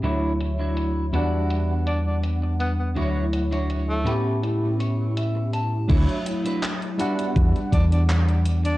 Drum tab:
CC |----------------|----------------|x---------------|
HH |x-x-x-x-x-x-x-x-|x-xxx-x-x-x-x-x-|xxxxxxxxxxxxxxxx|
CP |----------------|----------------|----x-------x---|
BD |----------------|----------------|o-------o-o-----|